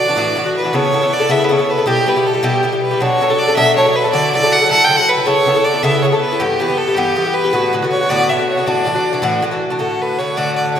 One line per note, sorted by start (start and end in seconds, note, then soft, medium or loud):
0.00 0.53 D5 loud
0.08 0.16 E3 soft
0.08 0.16 D4 medium
0.08 0.17 F#4 medium
0.16 0.35 A2 medium
0.16 0.36 E3 medium
0.16 0.36 D4 loud
0.16 0.36 F#4 medium
0.36 0.46 A2 medium
0.36 0.46 E3 medium
0.36 0.45 D4 medium
0.36 0.44 F#4 medium
0.45 0.65 E3 soft
0.45 0.63 D4 soft
0.45 0.63 F#4 medium
0.57 0.77 B4 medium
0.64 0.73 E3 soft
0.64 0.74 D4 soft
0.64 0.74 F#4 medium
0.73 0.91 C#3 medium
0.73 0.92 B3 medium
0.73 0.93 E4 medium
0.73 0.93 A4 medium
0.73 1.15 C#5 loud
0.93 1.03 C#3 medium
0.93 1.03 B3 medium
0.93 1.02 E4 medium
0.93 1.01 A4 medium
1.02 1.21 B3 soft
1.02 1.20 E4 medium
1.02 1.19 A4 medium
1.13 1.33 D5 loud
1.20 1.28 B3 soft
1.20 1.28 E4 medium
1.20 1.29 A4 medium
1.29 1.48 C#3 medium
1.29 1.48 B3 medium
1.29 1.49 E4 loud
1.29 1.50 A4 medium
1.29 1.46 E5 loud
1.44 1.53 B4 medium
1.49 1.59 C#3 medium
1.49 1.59 B3 medium
1.49 1.58 E4 medium
1.49 1.57 A4 medium
1.49 1.72 C#5 medium
1.58 1.78 B3 soft
1.58 1.77 E4 soft
1.58 1.76 A4 soft
1.71 1.88 B4 medium
1.77 1.86 B3 soft
1.77 1.86 E4 soft
1.77 1.87 A4 medium
1.86 2.05 B2 medium
1.86 2.05 G3 medium
1.86 2.06 E4 medium
1.86 2.07 G4 medium
1.86 2.10 G4 loud
2.06 2.16 B2 medium
2.06 2.16 G3 medium
2.06 2.16 E4 medium
2.06 2.15 G4 medium
2.06 2.28 B4 medium
2.16 2.34 G3 soft
2.16 2.33 E4 medium
2.16 2.32 G4 medium
2.26 2.46 A4 medium
2.33 2.42 G3 soft
2.33 2.43 E4 medium
2.33 2.43 G4 medium
2.43 2.62 B2 medium
2.43 2.63 G3 medium
2.43 2.63 E4 loud
2.43 2.64 G4 medium
2.43 2.82 G4 medium
2.63 2.73 B2 medium
2.63 2.73 G3 medium
2.63 2.72 E4 medium
2.63 2.71 G4 medium
2.72 2.92 G3 soft
2.72 2.91 E4 soft
2.72 2.90 G4 medium
2.82 3.03 B4 medium
2.91 3.00 G3 soft
2.91 3.01 E4 soft
2.91 3.00 G4 medium
3.00 3.20 B2 medium
3.00 3.20 F#3 medium
3.00 3.21 D4 medium
3.00 3.21 A4 medium
3.00 3.40 C#5 loud
3.21 3.30 B2 medium
3.21 3.30 F#3 medium
3.21 3.30 D4 medium
3.21 3.29 A4 medium
3.30 3.48 F#3 soft
3.30 3.47 D4 medium
3.30 3.46 A4 medium
3.39 3.56 D5 loud
3.47 3.56 F#3 soft
3.47 3.56 D4 medium
3.47 3.57 A4 medium
3.56 3.75 B2 medium
3.56 3.75 F#3 loud
3.56 3.76 D4 loud
3.56 3.77 A4 loud
3.56 3.75 E5 loud
3.76 3.86 B2 medium
3.76 3.86 F#3 medium
3.76 3.85 D4 medium
3.76 3.85 A4 medium
3.76 3.97 C#5 medium
3.86 4.05 F#3 soft
3.86 4.04 D4 soft
3.86 4.03 A4 medium
3.96 4.12 B4 loud
4.04 4.12 F#3 soft
4.04 4.13 D4 medium
4.04 4.13 A4 medium
4.12 4.32 D3 medium
4.12 4.33 F#3 medium
4.12 4.34 E4 medium
4.12 4.34 A4 medium
4.12 4.32 D5 loud
4.33 4.42 D3 medium
4.33 4.43 F#3 medium
4.33 4.43 E4 medium
4.33 4.42 A4 medium
4.33 4.54 D5 loud
4.43 4.62 F#3 soft
4.43 4.61 E4 medium
4.43 4.60 A4 medium
4.52 4.70 F#5 loud
4.61 4.69 F#3 soft
4.61 4.70 E4 medium
4.61 4.70 A4 medium
4.70 4.87 D3 medium
4.70 4.88 F#3 medium
4.70 4.88 E4 medium
4.70 4.89 A4 loud
4.70 4.86 F#5 loud
4.85 4.98 D3 medium
4.85 4.98 G5 loud
4.89 4.99 F#3 medium
4.89 4.98 E4 medium
4.89 4.98 A4 medium
4.96 5.18 F#3 soft
4.96 5.17 E4 medium
4.96 5.16 A4 soft
4.96 5.10 F#5 loud
5.09 5.28 B4 loud
5.18 5.26 F#3 soft
5.18 5.26 E4 soft
5.18 5.26 A4 medium
5.26 5.45 C#3 medium
5.26 5.46 B3 medium
5.26 5.46 E4 medium
5.26 5.47 A4 medium
5.26 5.66 C#5 loud
5.46 5.55 C#3 medium
5.46 5.56 B3 medium
5.46 5.55 E4 medium
5.46 5.54 A4 medium
5.55 5.75 B3 soft
5.55 5.74 E4 medium
5.55 5.72 A4 medium
5.64 5.84 D5 loud
5.74 5.82 B3 soft
5.74 5.83 E4 medium
5.74 5.83 A4 medium
5.83 6.02 C#3 medium
5.83 6.03 B3 medium
5.83 6.03 E4 loud
5.83 6.04 A4 medium
5.83 6.04 E5 loud
6.02 6.12 C#3 medium
6.02 6.13 B3 medium
6.02 6.12 E4 medium
6.02 6.11 A4 medium
6.02 6.21 C#5 medium
6.12 6.31 B3 soft
6.12 6.31 E4 soft
6.12 6.31 A4 medium
6.21 6.41 B4 loud
6.32 6.40 B3 soft
6.32 6.41 E4 soft
6.32 6.40 A4 medium
6.39 6.58 G2 medium
6.39 6.59 E3 medium
6.39 6.60 B3 medium
6.39 6.61 G4 medium
6.59 6.69 G2 medium
6.59 6.69 E3 medium
6.59 6.69 B3 medium
6.59 6.67 G4 medium
6.59 6.79 B4 loud
6.68 6.88 E3 medium
6.68 6.87 B3 medium
6.68 6.86 G4 medium
6.77 6.97 A4 loud
6.88 6.96 E3 soft
6.88 6.96 B3 soft
6.88 6.96 G4 medium
6.95 7.14 G2 medium
6.95 7.15 E3 medium
6.95 7.15 B3 medium
6.95 7.35 G4 loud
6.95 7.16 G4 medium
7.15 7.25 G2 medium
7.15 7.25 E3 medium
7.15 7.25 B3 medium
7.15 7.24 G4 medium
7.25 7.44 E3 soft
7.25 7.44 B3 soft
7.25 7.43 G4 medium
7.33 7.72 B4 loud
7.44 7.52 E3 soft
7.44 7.52 B3 soft
7.44 7.53 G4 medium
7.53 7.72 A2 medium
7.53 7.72 D3 medium
7.53 7.73 B3 medium
7.53 7.73 F#4 medium
7.73 7.82 A2 medium
7.73 7.82 D3 medium
7.73 7.83 B3 medium
7.73 7.81 F#4 medium
7.82 8.02 D3 medium
7.82 8.01 B3 medium
7.82 8.00 F#4 medium
7.91 8.11 C#5 loud
8.01 8.09 D3 medium
8.01 8.10 B3 soft
8.01 8.10 F#4 medium
8.09 8.28 A2 medium
8.09 8.29 D3 medium
8.09 8.29 B3 medium
8.09 8.30 F#4 medium
8.09 8.30 D5 loud
8.29 8.38 A2 medium
8.29 8.39 D3 medium
8.29 8.38 B3 medium
8.29 8.38 F#4 medium
8.29 8.48 E5 medium
8.39 8.58 D3 soft
8.39 8.57 B3 soft
8.39 8.56 F#4 soft
8.49 8.68 C#5 medium
8.57 8.67 D3 soft
8.57 8.67 B3 soft
8.57 8.66 F#4 medium
8.66 8.84 A2 medium
8.66 8.85 E3 medium
8.66 8.86 D4 medium
8.66 8.86 F#4 medium
8.66 9.43 D5 medium
8.85 8.95 A2 medium
8.85 8.95 E3 medium
8.85 8.94 D4 medium
8.85 8.93 F#4 medium
8.95 9.13 E3 soft
8.95 9.12 D4 medium
8.95 9.12 F#4 medium
9.13 9.22 E3 medium
9.13 9.22 D4 medium
9.13 9.22 F#4 medium
9.22 9.41 A2 medium
9.22 9.41 E3 loud
9.22 9.42 D4 loud
9.22 9.43 F#4 loud
9.42 9.52 A2 medium
9.42 9.52 E3 medium
9.42 9.51 D4 medium
9.42 9.50 F#4 medium
9.51 9.71 E3 soft
9.51 9.70 D4 medium
9.51 9.69 F#4 medium
9.70 9.79 E3 soft
9.70 9.79 D4 medium
9.70 9.79 F#4 medium
9.79 10.17 A2 medium
9.79 10.19 D3 medium
9.79 10.18 A3 medium
9.79 10.18 F#4 medium
9.79 10.03 A4 medium
10.02 10.20 B4 medium
10.18 10.36 A2 medium
10.18 10.36 D3 medium
10.18 10.37 A3 medium
10.18 10.38 F#4 medium
10.18 10.38 C#5 loud
10.37 10.74 A2 medium
10.37 10.76 D3 medium
10.37 10.76 A3 medium
10.37 10.76 F#4 medium
10.37 10.55 D5 loud
10.56 10.73 D5 medium
10.74 10.80 A2 medium
10.74 10.80 D3 medium
10.74 10.80 A3 medium
10.74 10.80 C#5 medium